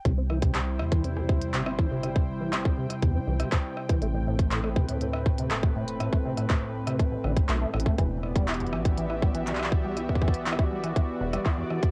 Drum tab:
HH |x-----------------x-----x-----------------x-----x-----------------x-----x-----------------------|x-----------------------x-----------------x-----x-----------------x-----x-----------------x-----|x-----------------x-----x-----------------x-----x-----------------x-----x-----------------x-----|x-----------------x-----x-----------------x-----x-----------------x-----x--------------x--------|
CP |------------------------x-----------------------------------------------x-----------------------|------------------------x-----------------------------------------------x-----------------------|------------------------x-----------------------------------------------x-----------------------|------------------------x-----------------------------------------------x-----------------------|
SD |------------r-----------------------r-----------------r-----------------------r-----------------|r-----------------------r-----------------r-----------------------r-----------------r-----------|------------------------------r-----------------------r-----------------r-----------------------|r-----------------r-----------------------r-----------------r-----------------------r-----------|
BD |o-----------------o-----------------------o-----------------o-----------------------o-----------|------o-----------------------o-----------------o-----------------------o-----------------o-----|------------------o-----------------o-----------------------o-----------------o-----------------|------o-----------------o-----------------------o-----------------o-----------------------o-----|

HH |x-----------------x-----x--x--x--x--------x-----x-----------------x-----x-----------------------|x-----------------x-----x-----------------x-----x-----------------x-----x-----------------x-----|
CP |------------------------x-----------------------------------------------x---x---x---------------|------------------------x-----------------------------------------------x-----------------------|
SD |------------r-----------------------r-----------------r-----------------------r-----------------|r--------------------------r--------------r-----------------------r-----------------r-----------|
BD |o-----------------o-----------------------o-----------------o-----------------------o-----------|------o--o--o--o--------------o-----------------o-----------------------o-----------------o-----|